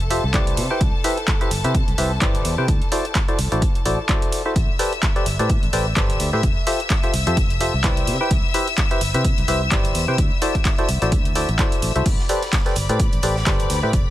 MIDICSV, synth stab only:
0, 0, Header, 1, 2, 480
1, 0, Start_track
1, 0, Key_signature, 0, "minor"
1, 0, Tempo, 468750
1, 827, Time_signature, 4, 2, 24, 8
1, 14439, End_track
2, 0, Start_track
2, 0, Title_t, "Synth stab"
2, 0, Program_c, 0, 62
2, 107, Note_on_c, 0, 65, 82
2, 107, Note_on_c, 0, 67, 75
2, 107, Note_on_c, 0, 69, 75
2, 107, Note_on_c, 0, 72, 76
2, 107, Note_on_c, 0, 76, 91
2, 246, Note_off_c, 0, 65, 0
2, 246, Note_off_c, 0, 67, 0
2, 246, Note_off_c, 0, 69, 0
2, 246, Note_off_c, 0, 72, 0
2, 246, Note_off_c, 0, 76, 0
2, 347, Note_on_c, 0, 64, 84
2, 347, Note_on_c, 0, 67, 77
2, 347, Note_on_c, 0, 71, 77
2, 347, Note_on_c, 0, 72, 78
2, 347, Note_on_c, 0, 74, 94
2, 690, Note_off_c, 0, 64, 0
2, 690, Note_off_c, 0, 67, 0
2, 690, Note_off_c, 0, 71, 0
2, 690, Note_off_c, 0, 72, 0
2, 690, Note_off_c, 0, 74, 0
2, 723, Note_on_c, 0, 64, 75
2, 723, Note_on_c, 0, 67, 68
2, 723, Note_on_c, 0, 71, 70
2, 723, Note_on_c, 0, 72, 69
2, 723, Note_on_c, 0, 79, 84
2, 832, Note_off_c, 0, 64, 0
2, 832, Note_off_c, 0, 67, 0
2, 832, Note_off_c, 0, 71, 0
2, 832, Note_off_c, 0, 72, 0
2, 832, Note_off_c, 0, 79, 0
2, 1067, Note_on_c, 0, 64, 90
2, 1067, Note_on_c, 0, 67, 78
2, 1067, Note_on_c, 0, 71, 80
2, 1067, Note_on_c, 0, 72, 81
2, 1067, Note_on_c, 0, 76, 99
2, 1206, Note_off_c, 0, 64, 0
2, 1206, Note_off_c, 0, 67, 0
2, 1206, Note_off_c, 0, 71, 0
2, 1206, Note_off_c, 0, 72, 0
2, 1206, Note_off_c, 0, 76, 0
2, 1443, Note_on_c, 0, 64, 79
2, 1443, Note_on_c, 0, 67, 71
2, 1443, Note_on_c, 0, 71, 72
2, 1443, Note_on_c, 0, 72, 72
2, 1443, Note_on_c, 0, 76, 88
2, 1552, Note_off_c, 0, 64, 0
2, 1552, Note_off_c, 0, 67, 0
2, 1552, Note_off_c, 0, 71, 0
2, 1552, Note_off_c, 0, 72, 0
2, 1552, Note_off_c, 0, 76, 0
2, 1683, Note_on_c, 0, 64, 78
2, 1683, Note_on_c, 0, 67, 73
2, 1683, Note_on_c, 0, 76, 86
2, 1684, Note_on_c, 0, 71, 73
2, 1684, Note_on_c, 0, 72, 72
2, 1792, Note_off_c, 0, 64, 0
2, 1792, Note_off_c, 0, 67, 0
2, 1792, Note_off_c, 0, 71, 0
2, 1792, Note_off_c, 0, 72, 0
2, 1792, Note_off_c, 0, 76, 0
2, 2027, Note_on_c, 0, 64, 81
2, 2027, Note_on_c, 0, 67, 75
2, 2027, Note_on_c, 0, 71, 75
2, 2027, Note_on_c, 0, 72, 74
2, 2028, Note_on_c, 0, 76, 90
2, 2166, Note_off_c, 0, 67, 0
2, 2166, Note_off_c, 0, 72, 0
2, 2167, Note_off_c, 0, 64, 0
2, 2167, Note_off_c, 0, 71, 0
2, 2167, Note_off_c, 0, 76, 0
2, 2267, Note_on_c, 0, 67, 78
2, 2267, Note_on_c, 0, 71, 77
2, 2267, Note_on_c, 0, 72, 78
2, 2267, Note_on_c, 0, 74, 95
2, 2268, Note_on_c, 0, 64, 85
2, 2610, Note_off_c, 0, 67, 0
2, 2610, Note_off_c, 0, 71, 0
2, 2610, Note_off_c, 0, 72, 0
2, 2610, Note_off_c, 0, 74, 0
2, 2611, Note_off_c, 0, 64, 0
2, 2643, Note_on_c, 0, 64, 75
2, 2643, Note_on_c, 0, 67, 68
2, 2643, Note_on_c, 0, 71, 69
2, 2643, Note_on_c, 0, 72, 70
2, 2643, Note_on_c, 0, 79, 83
2, 2735, Note_off_c, 0, 64, 0
2, 2735, Note_off_c, 0, 67, 0
2, 2735, Note_off_c, 0, 71, 0
2, 2735, Note_off_c, 0, 72, 0
2, 2735, Note_off_c, 0, 79, 0
2, 2987, Note_on_c, 0, 64, 89
2, 2987, Note_on_c, 0, 66, 79
2, 2987, Note_on_c, 0, 69, 83
2, 2987, Note_on_c, 0, 72, 80
2, 2988, Note_on_c, 0, 74, 97
2, 3126, Note_off_c, 0, 66, 0
2, 3126, Note_off_c, 0, 72, 0
2, 3127, Note_off_c, 0, 64, 0
2, 3127, Note_off_c, 0, 69, 0
2, 3127, Note_off_c, 0, 74, 0
2, 3363, Note_on_c, 0, 64, 78
2, 3363, Note_on_c, 0, 66, 72
2, 3363, Note_on_c, 0, 69, 73
2, 3363, Note_on_c, 0, 72, 72
2, 3363, Note_on_c, 0, 74, 86
2, 3472, Note_off_c, 0, 64, 0
2, 3472, Note_off_c, 0, 66, 0
2, 3472, Note_off_c, 0, 69, 0
2, 3472, Note_off_c, 0, 72, 0
2, 3472, Note_off_c, 0, 74, 0
2, 3603, Note_on_c, 0, 64, 78
2, 3603, Note_on_c, 0, 66, 73
2, 3603, Note_on_c, 0, 69, 73
2, 3603, Note_on_c, 0, 72, 72
2, 3603, Note_on_c, 0, 74, 85
2, 3712, Note_off_c, 0, 64, 0
2, 3712, Note_off_c, 0, 66, 0
2, 3712, Note_off_c, 0, 69, 0
2, 3712, Note_off_c, 0, 72, 0
2, 3712, Note_off_c, 0, 74, 0
2, 3947, Note_on_c, 0, 64, 78
2, 3947, Note_on_c, 0, 66, 75
2, 3947, Note_on_c, 0, 69, 76
2, 3947, Note_on_c, 0, 72, 76
2, 3947, Note_on_c, 0, 74, 90
2, 4086, Note_off_c, 0, 64, 0
2, 4086, Note_off_c, 0, 66, 0
2, 4086, Note_off_c, 0, 69, 0
2, 4086, Note_off_c, 0, 72, 0
2, 4086, Note_off_c, 0, 74, 0
2, 4187, Note_on_c, 0, 64, 84
2, 4187, Note_on_c, 0, 66, 80
2, 4187, Note_on_c, 0, 69, 78
2, 4187, Note_on_c, 0, 72, 76
2, 4187, Note_on_c, 0, 74, 94
2, 4530, Note_off_c, 0, 64, 0
2, 4530, Note_off_c, 0, 66, 0
2, 4530, Note_off_c, 0, 69, 0
2, 4530, Note_off_c, 0, 72, 0
2, 4530, Note_off_c, 0, 74, 0
2, 4563, Note_on_c, 0, 64, 74
2, 4563, Note_on_c, 0, 66, 67
2, 4563, Note_on_c, 0, 69, 68
2, 4563, Note_on_c, 0, 72, 69
2, 4563, Note_on_c, 0, 76, 82
2, 4655, Note_off_c, 0, 64, 0
2, 4655, Note_off_c, 0, 66, 0
2, 4655, Note_off_c, 0, 69, 0
2, 4655, Note_off_c, 0, 72, 0
2, 4655, Note_off_c, 0, 76, 0
2, 4907, Note_on_c, 0, 67, 90
2, 4907, Note_on_c, 0, 69, 82
2, 4907, Note_on_c, 0, 71, 81
2, 4907, Note_on_c, 0, 72, 81
2, 4907, Note_on_c, 0, 74, 97
2, 5046, Note_off_c, 0, 67, 0
2, 5046, Note_off_c, 0, 69, 0
2, 5046, Note_off_c, 0, 71, 0
2, 5046, Note_off_c, 0, 72, 0
2, 5046, Note_off_c, 0, 74, 0
2, 5283, Note_on_c, 0, 67, 79
2, 5283, Note_on_c, 0, 69, 72
2, 5283, Note_on_c, 0, 71, 73
2, 5283, Note_on_c, 0, 72, 71
2, 5283, Note_on_c, 0, 74, 87
2, 5392, Note_off_c, 0, 67, 0
2, 5392, Note_off_c, 0, 69, 0
2, 5392, Note_off_c, 0, 71, 0
2, 5392, Note_off_c, 0, 72, 0
2, 5392, Note_off_c, 0, 74, 0
2, 5523, Note_on_c, 0, 67, 80
2, 5523, Note_on_c, 0, 69, 72
2, 5523, Note_on_c, 0, 71, 72
2, 5523, Note_on_c, 0, 72, 71
2, 5523, Note_on_c, 0, 74, 86
2, 5632, Note_off_c, 0, 67, 0
2, 5632, Note_off_c, 0, 69, 0
2, 5632, Note_off_c, 0, 71, 0
2, 5632, Note_off_c, 0, 72, 0
2, 5632, Note_off_c, 0, 74, 0
2, 5867, Note_on_c, 0, 67, 82
2, 5867, Note_on_c, 0, 69, 76
2, 5867, Note_on_c, 0, 72, 73
2, 5867, Note_on_c, 0, 74, 90
2, 5868, Note_on_c, 0, 71, 74
2, 6006, Note_off_c, 0, 67, 0
2, 6006, Note_off_c, 0, 74, 0
2, 6007, Note_off_c, 0, 69, 0
2, 6007, Note_off_c, 0, 71, 0
2, 6007, Note_off_c, 0, 72, 0
2, 6107, Note_on_c, 0, 67, 85
2, 6107, Note_on_c, 0, 69, 79
2, 6107, Note_on_c, 0, 71, 76
2, 6107, Note_on_c, 0, 72, 78
2, 6107, Note_on_c, 0, 74, 94
2, 6450, Note_off_c, 0, 67, 0
2, 6450, Note_off_c, 0, 69, 0
2, 6450, Note_off_c, 0, 71, 0
2, 6450, Note_off_c, 0, 72, 0
2, 6450, Note_off_c, 0, 74, 0
2, 6483, Note_on_c, 0, 67, 77
2, 6483, Note_on_c, 0, 69, 68
2, 6483, Note_on_c, 0, 71, 69
2, 6483, Note_on_c, 0, 72, 71
2, 6483, Note_on_c, 0, 76, 85
2, 6575, Note_off_c, 0, 67, 0
2, 6575, Note_off_c, 0, 69, 0
2, 6575, Note_off_c, 0, 71, 0
2, 6575, Note_off_c, 0, 72, 0
2, 6575, Note_off_c, 0, 76, 0
2, 6827, Note_on_c, 0, 69, 81
2, 6828, Note_on_c, 0, 65, 85
2, 6828, Note_on_c, 0, 67, 79
2, 6828, Note_on_c, 0, 72, 81
2, 6828, Note_on_c, 0, 76, 96
2, 6967, Note_off_c, 0, 65, 0
2, 6967, Note_off_c, 0, 67, 0
2, 6967, Note_off_c, 0, 69, 0
2, 6967, Note_off_c, 0, 72, 0
2, 6967, Note_off_c, 0, 76, 0
2, 7203, Note_on_c, 0, 69, 72
2, 7203, Note_on_c, 0, 72, 70
2, 7204, Note_on_c, 0, 65, 80
2, 7204, Note_on_c, 0, 67, 73
2, 7204, Note_on_c, 0, 76, 85
2, 7312, Note_off_c, 0, 65, 0
2, 7312, Note_off_c, 0, 67, 0
2, 7312, Note_off_c, 0, 69, 0
2, 7312, Note_off_c, 0, 72, 0
2, 7312, Note_off_c, 0, 76, 0
2, 7443, Note_on_c, 0, 65, 78
2, 7443, Note_on_c, 0, 67, 72
2, 7443, Note_on_c, 0, 69, 73
2, 7443, Note_on_c, 0, 72, 73
2, 7443, Note_on_c, 0, 76, 87
2, 7552, Note_off_c, 0, 65, 0
2, 7552, Note_off_c, 0, 67, 0
2, 7552, Note_off_c, 0, 69, 0
2, 7552, Note_off_c, 0, 72, 0
2, 7552, Note_off_c, 0, 76, 0
2, 7787, Note_on_c, 0, 67, 74
2, 7788, Note_on_c, 0, 65, 82
2, 7788, Note_on_c, 0, 69, 76
2, 7788, Note_on_c, 0, 72, 74
2, 7788, Note_on_c, 0, 76, 89
2, 7927, Note_off_c, 0, 65, 0
2, 7927, Note_off_c, 0, 67, 0
2, 7927, Note_off_c, 0, 69, 0
2, 7927, Note_off_c, 0, 72, 0
2, 7927, Note_off_c, 0, 76, 0
2, 8028, Note_on_c, 0, 64, 86
2, 8028, Note_on_c, 0, 67, 77
2, 8028, Note_on_c, 0, 71, 75
2, 8028, Note_on_c, 0, 72, 77
2, 8028, Note_on_c, 0, 74, 92
2, 8371, Note_off_c, 0, 64, 0
2, 8371, Note_off_c, 0, 67, 0
2, 8371, Note_off_c, 0, 71, 0
2, 8371, Note_off_c, 0, 72, 0
2, 8371, Note_off_c, 0, 74, 0
2, 8403, Note_on_c, 0, 64, 75
2, 8403, Note_on_c, 0, 67, 67
2, 8403, Note_on_c, 0, 71, 71
2, 8403, Note_on_c, 0, 72, 67
2, 8403, Note_on_c, 0, 79, 84
2, 8512, Note_off_c, 0, 64, 0
2, 8512, Note_off_c, 0, 67, 0
2, 8512, Note_off_c, 0, 71, 0
2, 8512, Note_off_c, 0, 72, 0
2, 8512, Note_off_c, 0, 79, 0
2, 8748, Note_on_c, 0, 64, 90
2, 8748, Note_on_c, 0, 67, 81
2, 8748, Note_on_c, 0, 71, 82
2, 8748, Note_on_c, 0, 72, 80
2, 8748, Note_on_c, 0, 76, 97
2, 8887, Note_off_c, 0, 64, 0
2, 8887, Note_off_c, 0, 67, 0
2, 8887, Note_off_c, 0, 71, 0
2, 8887, Note_off_c, 0, 72, 0
2, 8887, Note_off_c, 0, 76, 0
2, 9124, Note_on_c, 0, 64, 79
2, 9124, Note_on_c, 0, 67, 71
2, 9124, Note_on_c, 0, 71, 73
2, 9124, Note_on_c, 0, 72, 72
2, 9124, Note_on_c, 0, 76, 90
2, 9232, Note_off_c, 0, 64, 0
2, 9232, Note_off_c, 0, 67, 0
2, 9232, Note_off_c, 0, 71, 0
2, 9232, Note_off_c, 0, 72, 0
2, 9232, Note_off_c, 0, 76, 0
2, 9363, Note_on_c, 0, 64, 78
2, 9363, Note_on_c, 0, 67, 70
2, 9363, Note_on_c, 0, 71, 72
2, 9363, Note_on_c, 0, 72, 72
2, 9363, Note_on_c, 0, 76, 88
2, 9472, Note_off_c, 0, 64, 0
2, 9472, Note_off_c, 0, 67, 0
2, 9472, Note_off_c, 0, 71, 0
2, 9472, Note_off_c, 0, 72, 0
2, 9472, Note_off_c, 0, 76, 0
2, 9707, Note_on_c, 0, 67, 76
2, 9708, Note_on_c, 0, 64, 81
2, 9708, Note_on_c, 0, 71, 76
2, 9708, Note_on_c, 0, 72, 76
2, 9708, Note_on_c, 0, 76, 88
2, 9847, Note_off_c, 0, 64, 0
2, 9847, Note_off_c, 0, 67, 0
2, 9847, Note_off_c, 0, 71, 0
2, 9847, Note_off_c, 0, 72, 0
2, 9847, Note_off_c, 0, 76, 0
2, 9948, Note_on_c, 0, 64, 84
2, 9948, Note_on_c, 0, 67, 80
2, 9948, Note_on_c, 0, 71, 75
2, 9948, Note_on_c, 0, 72, 78
2, 9948, Note_on_c, 0, 74, 93
2, 10291, Note_off_c, 0, 64, 0
2, 10291, Note_off_c, 0, 67, 0
2, 10291, Note_off_c, 0, 71, 0
2, 10291, Note_off_c, 0, 72, 0
2, 10291, Note_off_c, 0, 74, 0
2, 10323, Note_on_c, 0, 64, 73
2, 10323, Note_on_c, 0, 79, 83
2, 10324, Note_on_c, 0, 67, 71
2, 10324, Note_on_c, 0, 71, 68
2, 10324, Note_on_c, 0, 72, 70
2, 10415, Note_off_c, 0, 64, 0
2, 10415, Note_off_c, 0, 67, 0
2, 10415, Note_off_c, 0, 71, 0
2, 10415, Note_off_c, 0, 72, 0
2, 10415, Note_off_c, 0, 79, 0
2, 10668, Note_on_c, 0, 64, 85
2, 10668, Note_on_c, 0, 66, 80
2, 10668, Note_on_c, 0, 69, 80
2, 10668, Note_on_c, 0, 72, 78
2, 10668, Note_on_c, 0, 74, 95
2, 10807, Note_off_c, 0, 64, 0
2, 10807, Note_off_c, 0, 66, 0
2, 10807, Note_off_c, 0, 69, 0
2, 10807, Note_off_c, 0, 72, 0
2, 10807, Note_off_c, 0, 74, 0
2, 11044, Note_on_c, 0, 64, 79
2, 11044, Note_on_c, 0, 66, 73
2, 11044, Note_on_c, 0, 69, 72
2, 11044, Note_on_c, 0, 72, 74
2, 11044, Note_on_c, 0, 74, 86
2, 11152, Note_off_c, 0, 64, 0
2, 11152, Note_off_c, 0, 66, 0
2, 11152, Note_off_c, 0, 69, 0
2, 11152, Note_off_c, 0, 72, 0
2, 11152, Note_off_c, 0, 74, 0
2, 11283, Note_on_c, 0, 64, 79
2, 11283, Note_on_c, 0, 74, 84
2, 11284, Note_on_c, 0, 66, 75
2, 11284, Note_on_c, 0, 69, 75
2, 11284, Note_on_c, 0, 72, 71
2, 11392, Note_off_c, 0, 64, 0
2, 11392, Note_off_c, 0, 66, 0
2, 11392, Note_off_c, 0, 69, 0
2, 11392, Note_off_c, 0, 72, 0
2, 11392, Note_off_c, 0, 74, 0
2, 11628, Note_on_c, 0, 64, 83
2, 11628, Note_on_c, 0, 66, 74
2, 11628, Note_on_c, 0, 69, 74
2, 11628, Note_on_c, 0, 72, 75
2, 11628, Note_on_c, 0, 74, 89
2, 11767, Note_off_c, 0, 64, 0
2, 11767, Note_off_c, 0, 66, 0
2, 11767, Note_off_c, 0, 69, 0
2, 11767, Note_off_c, 0, 72, 0
2, 11767, Note_off_c, 0, 74, 0
2, 11867, Note_on_c, 0, 72, 78
2, 11868, Note_on_c, 0, 64, 84
2, 11868, Note_on_c, 0, 66, 75
2, 11868, Note_on_c, 0, 69, 80
2, 11868, Note_on_c, 0, 74, 95
2, 12210, Note_off_c, 0, 72, 0
2, 12211, Note_off_c, 0, 64, 0
2, 12211, Note_off_c, 0, 66, 0
2, 12211, Note_off_c, 0, 69, 0
2, 12211, Note_off_c, 0, 74, 0
2, 12243, Note_on_c, 0, 64, 77
2, 12243, Note_on_c, 0, 66, 71
2, 12243, Note_on_c, 0, 69, 70
2, 12243, Note_on_c, 0, 72, 70
2, 12243, Note_on_c, 0, 76, 83
2, 12335, Note_off_c, 0, 64, 0
2, 12335, Note_off_c, 0, 66, 0
2, 12335, Note_off_c, 0, 69, 0
2, 12335, Note_off_c, 0, 72, 0
2, 12335, Note_off_c, 0, 76, 0
2, 12588, Note_on_c, 0, 67, 87
2, 12588, Note_on_c, 0, 69, 81
2, 12588, Note_on_c, 0, 71, 82
2, 12588, Note_on_c, 0, 72, 80
2, 12588, Note_on_c, 0, 74, 98
2, 12727, Note_off_c, 0, 67, 0
2, 12727, Note_off_c, 0, 69, 0
2, 12727, Note_off_c, 0, 71, 0
2, 12727, Note_off_c, 0, 72, 0
2, 12727, Note_off_c, 0, 74, 0
2, 12963, Note_on_c, 0, 67, 80
2, 12963, Note_on_c, 0, 69, 72
2, 12963, Note_on_c, 0, 71, 73
2, 12963, Note_on_c, 0, 72, 72
2, 12963, Note_on_c, 0, 74, 88
2, 13072, Note_off_c, 0, 67, 0
2, 13072, Note_off_c, 0, 69, 0
2, 13072, Note_off_c, 0, 71, 0
2, 13072, Note_off_c, 0, 72, 0
2, 13072, Note_off_c, 0, 74, 0
2, 13203, Note_on_c, 0, 67, 79
2, 13203, Note_on_c, 0, 69, 72
2, 13203, Note_on_c, 0, 71, 72
2, 13203, Note_on_c, 0, 72, 73
2, 13203, Note_on_c, 0, 74, 86
2, 13312, Note_off_c, 0, 67, 0
2, 13312, Note_off_c, 0, 69, 0
2, 13312, Note_off_c, 0, 71, 0
2, 13312, Note_off_c, 0, 72, 0
2, 13312, Note_off_c, 0, 74, 0
2, 13547, Note_on_c, 0, 67, 82
2, 13547, Note_on_c, 0, 71, 74
2, 13548, Note_on_c, 0, 69, 75
2, 13548, Note_on_c, 0, 72, 75
2, 13548, Note_on_c, 0, 74, 90
2, 13687, Note_off_c, 0, 67, 0
2, 13687, Note_off_c, 0, 69, 0
2, 13687, Note_off_c, 0, 71, 0
2, 13687, Note_off_c, 0, 72, 0
2, 13687, Note_off_c, 0, 74, 0
2, 13788, Note_on_c, 0, 67, 88
2, 13788, Note_on_c, 0, 69, 78
2, 13788, Note_on_c, 0, 71, 78
2, 13788, Note_on_c, 0, 72, 80
2, 13788, Note_on_c, 0, 74, 91
2, 14131, Note_off_c, 0, 67, 0
2, 14131, Note_off_c, 0, 69, 0
2, 14131, Note_off_c, 0, 71, 0
2, 14131, Note_off_c, 0, 72, 0
2, 14131, Note_off_c, 0, 74, 0
2, 14163, Note_on_c, 0, 67, 75
2, 14163, Note_on_c, 0, 69, 68
2, 14163, Note_on_c, 0, 71, 67
2, 14163, Note_on_c, 0, 72, 69
2, 14163, Note_on_c, 0, 76, 81
2, 14255, Note_off_c, 0, 67, 0
2, 14255, Note_off_c, 0, 69, 0
2, 14255, Note_off_c, 0, 71, 0
2, 14255, Note_off_c, 0, 72, 0
2, 14255, Note_off_c, 0, 76, 0
2, 14439, End_track
0, 0, End_of_file